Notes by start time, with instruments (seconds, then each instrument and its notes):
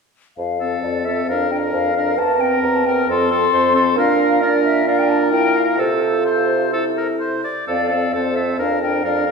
0.37 bassoon F2, flute F5
0.60 french horn C4, oboe A4
0.82 bassoon F2, flute D5
1.05 french horn C4, oboe A4, flute E5
1.28 bassoon F2, french horn D4, oboe A#4, clarinet A#4, flute F5
1.51 french horn D4, oboe A#4, flute G5
1.73 bassoon F2, flute F5
1.94 french horn D4, oboe A#4
2.17 bassoon E2, flute A5
2.39 french horn C4, oboe A#4, flute G5
2.63 bassoon E2, flute A#5
2.76 flute A5
2.85 french horn C4, oboe A#4, flute G5
3.07 bassoon F2, french horn C4, clarinet A4, oboe A4, flute C6
3.30 french horn C4, oboe A4
3.53 bassoon F2, clarinet C5
3.74 french horn C4, oboe A4
3.96 bassoon A#2, french horn D4, clarinet A#4, oboe A#4, flute F5
4.41 french horn D4, oboe A#4, flute D5
4.64 flute E5
4.86 french horn D4, oboe A#4, clarinet D5, flute F5
4.99 flute G5
5.09 flute A5
5.21 flute A#5
5.32 french horn E4, clarinet A#4, flute G5
5.57 flute F5
5.78 bassoon C3, french horn F4, oboe A4, clarinet A4, flute C5
6.25 oboe C5
6.73 french horn E4, oboe A4
6.97 oboe A#4
7.19 oboe C5
7.44 oboe D5
7.67 bassoon F2, french horn C4, oboe A4, clarinet D5, flute F5
7.89 french horn C4, oboe A4
8.13 bassoon F2, french horn C4, oboe A4, clarinet C5, flute D5
8.36 french horn C4, oboe A4, flute E5
8.59 bassoon F2, french horn D4, oboe A#4, clarinet A#4, flute F5
8.82 french horn D4, oboe A#4, flute G5
9.04 bassoon F2, french horn D4, oboe A#4, clarinet D5, flute F5
9.26 french horn D4, oboe A#4